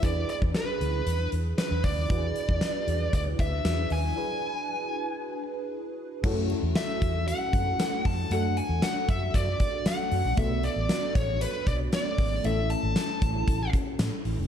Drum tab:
CC |----------------|----------------|----------------|x---------------|
HH |x-x-x-x-x-x-x-o-|x-x-x-x-x-x-x-o-|----------------|--x-x-x-x-x-x-o-|
TB |----------------|----------------|----------------|----x-------x---|
SD |----o-------o---|----o-------o---|----------------|----o-------o---|
BD |o--o----------o-|o--o----o-o-----|----------------|o-----o---o---o-|

CC |----------------|----------------|----------------|
HH |x-x-x-x-x-x-x-o-|x-x-x-x-x-x-x-o-|x-x-x-x-x-x-x-o-|
TB |----x-------x---|----x-------x---|----x-------x---|
SD |----o-------o---|----o-------o---|----o-------o---|
BD |------o-o-o-----|o-----o---o---o-|------o-o-o-----|